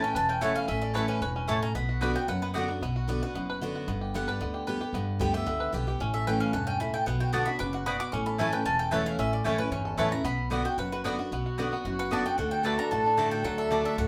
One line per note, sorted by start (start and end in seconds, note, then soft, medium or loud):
0.00 0.13 A2 medium
0.00 0.28 C#4 medium
0.00 0.15 E4 medium
0.00 0.13 A4 medium
0.00 0.14 B4 medium
0.00 0.16 G5 loud
0.05 0.16 C#4 soft
0.15 0.54 E1 medium
0.15 0.66 E2 medium
0.15 0.53 B4 medium
0.15 0.29 A5 loud
0.29 0.54 C#4 medium
0.29 0.42 G5 medium
0.41 0.67 E3 medium
0.41 0.51 A3 loud
0.41 0.68 A3 medium
0.41 0.68 C#4 medium
0.41 0.51 E4 loud
0.41 0.69 E4 loud
0.41 0.79 A4 medium
0.41 0.51 C#5 loud
0.41 0.55 F#5 medium
0.41 0.52 A5 loud
0.55 0.67 C#4 medium
0.55 0.68 F5 loud
0.68 1.07 A1 medium
0.68 1.19 A2 medium
0.68 1.06 C#4 medium
0.68 0.82 E5 medium
0.82 1.19 A4 medium
0.82 0.94 D5 medium
0.94 1.21 E3 medium
0.94 1.04 A3 medium
0.94 1.21 A3 medium
0.94 1.21 C#4 medium
0.94 1.04 E4 medium
0.94 1.22 E4 loud
0.94 1.21 B4 medium
0.94 1.08 C#5 medium
0.94 1.04 C#5 loud
0.94 1.04 A5 loud
1.08 1.35 C#4 medium
1.08 1.21 B4 medium
1.21 1.60 E1 medium
1.21 1.47 G2 medium
1.21 1.60 B4 medium
1.21 1.30 C#5 medium
1.36 1.61 C#4 medium
1.48 1.74 A2 medium
1.48 1.57 A3 loud
1.48 1.58 E4 loud
1.48 1.75 A4 medium
1.48 1.58 C#5 loud
1.48 1.58 A5 loud
1.48 1.62 C#6 loud
1.62 1.75 C#4 medium
1.62 1.75 A#5 loud
1.75 2.14 B1 medium
1.75 2.13 B3 medium
1.75 2.12 B5 loud
1.89 2.26 F#4 medium
2.01 2.15 D3 medium
2.01 2.11 B3 medium
2.01 2.15 B3 medium
2.01 2.15 D4 loud
2.01 2.11 F#4 medium
2.01 2.14 F#4 medium
2.01 2.28 B4 medium
2.01 2.11 D5 loud
2.01 2.11 F#5 loud
2.15 2.42 B3 medium
2.15 2.29 D4 soft
2.15 2.28 F#4 soft
2.15 2.28 G5 loud
2.28 2.67 F#1 medium
2.28 2.80 F#2 medium
2.28 2.66 B4 medium
2.28 2.41 F#5 loud
2.42 2.68 B3 medium
2.42 2.50 B4 medium
2.54 2.68 D3 medium
2.54 2.64 B3 loud
2.54 2.68 B3 medium
2.54 2.69 D4 medium
2.54 2.64 F#4 loud
2.54 2.82 F#4 medium
2.54 2.64 D5 medium
2.54 2.64 F#5 loud
2.58 2.67 F#4 medium
2.68 2.81 B3 medium
2.68 2.82 D4 medium
2.68 2.81 F#4 medium
2.81 3.20 B1 medium
2.81 3.33 B2 medium
2.81 3.09 B3 medium
2.96 3.21 F#4 medium
3.08 3.21 D3 medium
3.08 3.21 B3 medium
3.08 3.35 B3 medium
3.08 3.22 D4 medium
3.08 3.21 F#4 medium
3.08 3.22 D5 medium
3.22 3.36 D4 soft
3.22 3.35 F#4 medium
3.22 3.59 F#4 medium
3.22 3.59 B4 medium
3.35 3.73 F#1 medium
3.35 3.86 F#2 medium
3.35 3.87 B3 medium
3.50 4.28 B4 medium
3.61 3.87 D3 medium
3.61 3.87 B3 medium
3.61 3.87 D4 medium
3.61 3.74 F#4 medium
3.61 3.88 F#4 loud
3.75 3.88 F#4 medium
3.87 4.26 G1 medium
3.87 4.38 G2 medium
3.87 4.14 B3 medium
4.01 4.38 G4 medium
4.14 4.27 D3 medium
4.14 4.28 G3 loud
4.14 4.40 B3 medium
4.14 4.28 B3 loud
4.14 4.26 G4 loud
4.14 4.28 F#5 medium
4.27 4.41 B3 soft
4.27 4.40 G4 medium
4.27 4.65 B4 medium
4.27 4.65 D5 medium
4.41 4.80 D2 medium
4.41 4.66 D3 medium
4.41 4.79 B3 medium
4.54 4.80 G4 medium
4.67 4.80 D3 loud
4.67 4.81 G3 medium
4.67 4.81 B3 medium
4.67 4.80 G4 loud
4.67 5.05 B4 medium
4.81 4.95 B3 soft
4.81 5.18 G4 medium
4.81 4.94 G4 medium
4.93 5.13 G1 medium
4.93 5.45 G2 medium
4.93 5.19 B3 medium
5.19 5.43 D2 loud
5.19 5.33 D3 medium
5.19 5.34 G3 medium
5.19 5.46 B3 medium
5.19 5.34 B3 loud
5.19 5.33 G4 loud
5.19 5.34 G5 medium
5.34 5.48 B3 soft
5.34 5.71 G4 medium
5.34 5.47 G4 medium
5.34 5.71 E5 medium
5.46 5.70 C#2 medium
5.46 5.71 D3 medium
5.46 5.85 B3 medium
5.60 5.97 B4 medium
5.72 5.96 B1 medium
5.72 5.86 D3 medium
5.72 5.87 G3 medium
5.72 5.87 B3 loud
5.72 5.87 G4 medium
5.72 5.86 G4 medium
5.87 6.01 B3 soft
5.87 6.00 G4 medium
5.87 6.01 G4 medium
6.00 6.39 A1 medium
6.00 6.51 A2 medium
6.00 6.38 C#4 medium
6.14 6.51 A4 medium
6.14 6.26 E5 medium
6.27 6.52 E3 medium
6.27 6.53 A3 medium
6.27 6.53 C#4 medium
6.27 6.53 E4 medium
6.27 6.64 B4 medium
6.27 6.40 G5 loud
6.40 6.66 C#4 medium
6.40 6.53 F5 medium
6.53 6.92 E1 medium
6.53 6.79 G2 medium
6.53 6.91 A4 medium
6.53 6.66 F#5 medium
6.67 7.04 C#4 medium
6.67 6.80 G5 loud
6.80 7.06 A2 medium
6.80 7.07 E4 medium
6.80 6.93 B5 loud
6.94 7.07 A4 medium
6.94 7.06 G5 loud
7.06 7.45 B1 medium
7.06 7.58 B2 medium
7.06 7.33 B3 medium
7.06 7.20 F#5 medium
7.20 7.46 F#4 medium
7.20 7.33 G5 medium
7.33 7.46 D3 loud
7.33 7.42 B3 medium
7.33 7.47 B3 loud
7.33 7.71 B3 medium
7.33 7.47 D4 medium
7.33 7.42 F#4 medium
7.33 7.45 F#4 medium
7.33 7.43 D5 loud
7.33 7.43 F#5 loud
7.33 7.45 A5 medium
7.46 7.60 D4 soft
7.46 7.59 F#4 medium
7.46 7.73 F#4 medium
7.46 7.59 B5 loud
7.59 7.99 F#1 medium
7.59 7.85 C#3 medium
7.59 7.86 B4 medium
7.59 7.72 D6 loud
7.73 7.99 F#4 medium
7.73 7.86 F#5 medium
7.86 8.12 B2 medium
7.86 7.95 B3 loud
7.86 7.96 F#4 loud
7.86 8.13 B4 medium
7.86 7.96 D5 loud
7.86 7.96 F#5 loud
7.86 7.99 B5 medium
8.00 8.13 F#4 medium
8.00 8.12 D6 loud
8.12 8.52 A1 medium
8.12 8.64 A2 medium
8.12 8.39 C#4 medium
8.12 8.26 C#6 medium
8.26 8.64 A4 medium
8.26 8.39 B5 loud
8.38 8.52 E3 medium
8.38 8.48 A3 medium
8.38 8.53 A3 medium
8.38 8.65 C#4 medium
8.38 8.53 C#4 loud
8.38 8.48 E4 medium
8.38 8.51 E4 loud
8.38 8.49 C#5 loud
8.38 8.52 A5 medium
8.38 8.49 A5 medium
8.52 8.66 C#4 soft
8.52 8.65 E4 medium
8.52 8.90 B4 medium
8.52 8.65 G5 loud
8.65 9.04 E1 medium
8.65 9.16 E2 medium
8.65 9.03 C#4 medium
8.65 8.79 A5 loud
8.79 9.16 A4 medium
8.79 8.91 G5 loud
8.91 9.18 E3 medium
8.91 9.01 A3 loud
8.91 9.18 A3 medium
8.91 9.19 C#4 loud
8.91 9.01 E4 loud
8.91 9.19 E4 medium
8.91 9.30 B4 medium
8.91 9.02 C#5 loud
8.91 9.05 F#5 medium
8.91 9.02 A5 loud
9.05 9.43 E4 medium
9.05 9.19 F5 loud
9.18 9.38 A1 medium
9.18 9.69 A2 medium
9.18 9.45 C#4 medium
9.18 9.32 E5 medium
9.33 9.45 D5 medium
9.44 9.68 F#1 medium
9.44 9.58 E3 medium
9.44 9.54 A3 medium
9.44 9.59 A3 medium
9.44 9.71 C#4 medium
9.44 9.59 C#4 medium
9.44 9.55 E4 loud
9.44 9.58 E4 loud
9.44 9.55 C#5 medium
9.44 9.58 C#5 medium
9.44 9.55 A5 loud
9.58 9.73 C#4 soft
9.58 9.72 E4 medium
9.58 9.71 B4 medium
9.58 9.96 B4 medium
9.71 9.94 G1 medium
9.71 10.23 E2 medium
9.71 10.10 C#4 medium
9.71 9.80 C#5 medium
9.85 10.23 A4 medium
9.97 10.21 A1 medium
9.97 10.11 E3 medium
9.97 10.07 A3 loud
9.97 10.12 A3 medium
9.97 10.11 C#4 medium
9.97 10.08 E4 loud
9.97 10.10 E4 medium
9.97 10.25 B4 medium
9.97 10.08 C#5 loud
9.97 10.08 A5 loud
9.97 10.12 C#6 medium
10.11 10.25 C#4 soft
10.11 10.24 E4 medium
10.11 10.25 E4 medium
10.11 10.25 A#5 loud
10.24 10.63 B1 medium
10.24 10.76 B2 medium
10.24 10.50 B3 medium
10.24 10.63 B5 loud
10.50 10.64 D3 medium
10.50 10.61 B3 medium
10.50 10.65 B3 medium
10.50 10.89 B3 medium
10.50 10.65 D4 medium
10.50 10.61 F#4 medium
10.50 10.63 F#4 loud
10.50 10.61 D5 loud
10.50 10.61 F#5 loud
10.64 10.79 D4 soft
10.64 10.78 F#4 medium
10.64 10.91 F#4 medium
10.64 10.78 G5 medium
10.78 11.17 F#1 medium
10.78 11.29 F#2 medium
10.78 11.04 B4 medium
10.78 10.92 F#5 medium
10.92 11.18 F#4 medium
10.92 11.00 B4 medium
11.04 11.18 D3 medium
11.04 11.14 B3 loud
11.04 11.18 B3 loud
11.04 11.19 D4 loud
11.04 11.14 F#4 loud
11.04 11.17 F#4 loud
11.04 11.32 B4 medium
11.04 11.14 D5 loud
11.04 11.15 F#5 loud
11.19 11.32 D4 soft
11.19 11.31 F#4 medium
11.19 11.32 F#4 medium
11.31 11.70 B1 medium
11.31 11.83 B2 medium
11.31 11.70 B3 medium
11.31 12.40 F#4 medium
11.46 11.60 F#4 medium
11.58 11.71 D3 medium
11.58 11.67 B3 medium
11.58 11.72 B3 medium
11.58 11.72 D4 medium
11.58 11.68 F#4 medium
11.58 11.86 F#4 medium
11.58 11.71 F#4 medium
11.58 11.68 D5 medium
11.58 11.68 F#5 medium
11.72 12.10 B3 medium
11.72 11.86 D4 soft
11.72 11.85 F#4 medium
11.85 12.24 F#1 medium
11.85 12.36 F#2 medium
11.85 12.13 F#4 medium
11.99 12.36 B4 medium
11.99 12.12 F#5 loud
12.11 12.24 D3 medium
12.11 12.21 B3 loud
12.11 12.25 B3 medium
12.11 12.25 D4 medium
12.11 12.21 F#4 loud
12.11 12.39 F#4 medium
12.11 12.23 F#4 medium
12.11 12.21 D5 loud
12.11 12.21 F#5 loud
12.11 12.25 A5 loud
12.24 12.39 B3 medium
12.24 12.37 F#4 medium
12.24 12.37 G5 loud
12.38 12.77 D2 medium
12.38 12.62 D3 medium
12.38 12.53 F#4 medium
12.38 14.08 A4 loud
12.38 12.51 F#5 medium
12.51 12.92 F#4 medium
12.51 12.64 G5 loud
12.63 12.77 D3 medium
12.63 12.78 A3 loud
12.63 12.74 A3 medium
12.63 12.78 D4 loud
12.63 12.74 F#4 medium
12.63 12.77 F#4 medium
12.63 13.03 B4 medium
12.63 12.74 D5 medium
12.63 12.78 A5 medium
12.63 12.75 A5 loud
12.78 13.06 D4 medium
12.78 12.92 D4 soft
12.78 12.91 F#4 medium
12.78 12.91 A#5 loud
12.91 13.30 A1 medium
12.91 13.42 A2 medium
12.91 13.19 F#4 medium
12.91 13.29 A5 medium
13.06 13.58 D4 medium
13.17 13.43 D3 medium
13.17 13.27 A3 loud
13.17 13.44 A3 loud
13.17 13.44 D4 medium
13.17 13.27 F#4 loud
13.17 13.32 F#4 medium
13.17 13.44 F#4 loud
13.17 13.28 D5 loud
13.17 13.28 A5 loud
13.31 13.71 F#4 medium
13.31 13.44 G5 loud
13.44 13.83 D2 medium
13.44 13.70 D3 medium
13.44 14.08 F#3 medium
13.44 13.58 F#5 medium
13.58 13.84 D4 medium
13.58 13.71 E5 medium
13.70 13.96 D3 medium
13.70 13.80 A3 medium
13.70 13.97 A3 medium
13.70 13.97 D4 medium
13.70 13.80 F#4 medium
13.70 13.98 F#4 medium
13.70 13.81 D5 loud
13.70 13.85 D5 medium
13.70 13.81 A5 loud
13.84 14.08 D4 medium
13.84 13.98 E5 medium
13.97 14.08 D2 medium
13.97 14.08 A2 medium
13.97 14.08 F#4 medium
13.97 14.08 F#5 loud